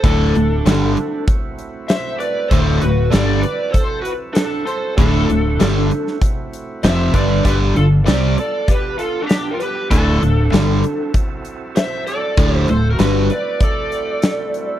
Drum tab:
HH |x-x-x-x-x-x-x-x-|x-x-x-x-x-x-x-x-|x-x-x-x-x-x-x-x-|x-x-x-x-x-x-x-x-|
SD |----o-------o---|----o-------o---|----o--o----o---|----o-------o---|
BD |o-------o-------|o-------o-------|o-------o-----o-|o-------o-------|

HH |x-x-x-x-x-x-x-x-|x-x-x-x-x-x-x-x-|
SD |----o-------o---|----o-------o---|
BD |o-------o-------|o-------o-------|